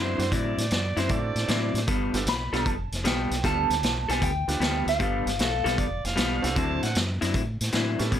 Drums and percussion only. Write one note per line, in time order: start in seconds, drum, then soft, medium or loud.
0.19 snare soft
0.19 closed hi-hat medium
0.32 kick loud
0.32 closed hi-hat medium
0.58 snare soft
0.58 closed hi-hat medium
0.71 snare loud
0.71 closed hi-hat medium
0.97 snare soft
0.97 closed hi-hat medium
1.09 kick loud
1.09 closed hi-hat medium
1.36 snare soft
1.36 closed hi-hat medium
1.48 snare loud
1.48 closed hi-hat medium
1.75 snare soft
1.75 closed hi-hat medium
1.88 kick loud
1.88 closed hi-hat medium
2.14 snare soft
2.14 closed hi-hat medium
2.27 snare loud
2.27 closed hi-hat medium
2.53 snare soft
2.53 closed hi-hat medium
2.66 kick loud
2.66 closed hi-hat medium
2.92 snare soft
2.92 closed hi-hat medium
3.05 snare loud
3.05 closed hi-hat medium
3.31 snare soft
3.31 closed hi-hat medium
3.44 kick loud
3.44 snare soft
3.44 closed hi-hat medium
3.70 snare soft
3.70 closed hi-hat medium
3.83 snare loud
3.83 closed hi-hat medium
4.09 snare soft
4.09 closed hi-hat medium
4.22 kick loud
4.22 closed hi-hat medium
4.48 snare soft
4.48 closed hi-hat medium
4.61 snare loud
4.61 closed hi-hat medium
4.88 snare soft
4.88 closed hi-hat medium
5.00 kick loud
5.00 closed hi-hat medium
5.27 snare soft
5.27 closed hi-hat medium
5.39 snare loud
5.39 closed hi-hat medium
5.66 snare soft
5.66 closed hi-hat medium
5.78 kick loud
5.78 closed hi-hat medium
6.05 snare soft
6.05 closed hi-hat medium
6.17 snare loud
6.17 closed hi-hat medium
6.44 snare soft
6.44 closed hi-hat medium
6.56 kick loud
6.56 closed hi-hat medium
6.83 snare soft
6.83 closed hi-hat medium
6.95 snare loud
6.95 closed hi-hat medium
7.22 snare soft
7.22 closed hi-hat medium
7.34 kick loud
7.34 closed hi-hat medium
7.61 snare soft
7.61 closed hi-hat medium
7.72 snare loud
7.72 closed hi-hat medium
7.99 snare soft
7.99 closed hi-hat medium
8.12 kick loud
8.12 closed hi-hat medium